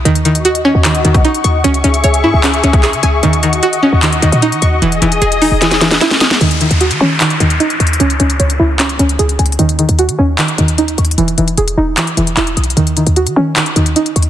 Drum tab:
HH |x--x--x--x--x--x--------x--x--x--x--x--x--x-----|x--x--x--x--x--x--------x--x--x--x--x--x--x-----|x--x--x--x--x--x--------x--x--x--x--x--x--x-----|x--x--x--x--x--x--o-----x--x--x--x--x--x--x-----|
CP |------------------------x-----------------------|------------------------x-----------x-----------|------------------------x-----------------------|------------------------------------------------|
SD |------------------------------------------------|------------------------------------------------|------------------------------------------------|------------------------o--o--o--o--o--o--o--o--|
BD |---------------------------------o--------------|---------------------------------o--------------|------------------------------------------------|------------------------------------------------|

HH |x--x--x--x--x--x--------x--x--x--x--x--x--x-x-x-|x--x--x--x--x--x--------x--x--x--x--x--x--x-x-x-|x--x--x--x--x--x--------x--x--x--x--x--x--x-x-x-|x--x--x--x--x--x--------x--x--x--x--x--x--x-x-x-|
CP |------------------------x-----------------------|------------------------x-----------------------|------------------------x-----------------------|------------------------x-----------x-----------|
SD |------------------------------------------------|------------------------------------------------|------------------------------------------------|------------------------------------------------|
BD |------------------------------------------------|------------------------------------------------|------------------------------------------------|------------------------------------------------|

HH |x--x--x--x--x--x--------x--x--x--x--x--x--x-x---|
CP |------------------------x-----------------------|
SD |------------------------------------------------|
BD |------------------------------------------------|